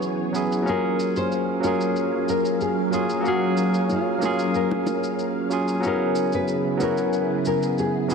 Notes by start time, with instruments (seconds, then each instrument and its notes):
Already playing: string machine E3 B3 G#4 C#5, tine electric piano F#3 B3 C#4 E4 F#4 G#4
0.02 shaker
0.33 tine electric piano F#3 B3 C#4 E4 G#4, shaker
0.52 shaker
0.63 tine electric piano F#3 A#3 C#4
0.68 string machine F#3 C#4 A#4 F5, tine electric piano F4 G#4, nylon-string guitar A#4, shaker
1.00 shaker
1.16 nylon-string guitar C5, shaker
1.32 shaker
1.60 tine electric piano F#3 A#3 C#4, shaker
1.64 tine electric piano F4 G#4, nylon-string guitar A#4, high bongo
1.81 shaker
1.96 shaker
2.29 nylon-string guitar A#4, shaker
2.45 shaker
2.61 nylon-string guitar G#4, shaker
2.91 tine electric piano F#3 A#3 C#4 F4 G#4, shaker
2.95 nylon-string guitar G#4
3.10 shaker
3.21 tine electric piano F#3 A#3 C#4
3.26 nylon-string guitar F#4, tine electric piano G#4 F5, shaker
3.57 shaker
3.74 shaker
3.89 nylon-string guitar F4, high bongo, shaker
4.19 tine electric piano F#3 A#3 C#4, shaker
4.23 tine electric piano F4 G#4, high bongo
4.39 shaker
4.54 nylon-string guitar A#4, shaker
4.71 high bongo
4.87 high bongo, shaker
5.04 shaker
5.19 shaker
5.50 tine electric piano F#3 A#3 C#4 F4 G#4, shaker
5.68 shaker
5.80 tine electric piano F#3 B3 C#4, shaker
5.85 string machine C#3 B3 E4 G#4, tine electric piano E4 G#4, nylon-string guitar A#4
6.15 shaker
6.33 nylon-string guitar B4, shaker
6.48 shaker
6.77 tine electric piano F#3 B3 C#4, high bongo, shaker
6.82 tine electric piano E4 F#4, nylon-string guitar A#4
6.98 shaker
7.13 shaker
7.45 nylon-string guitar A#4, shaker
7.63 shaker
7.78 nylon-string guitar G#4, shaker
8.08 tine electric piano F#3 B3 C#4 E4, shaker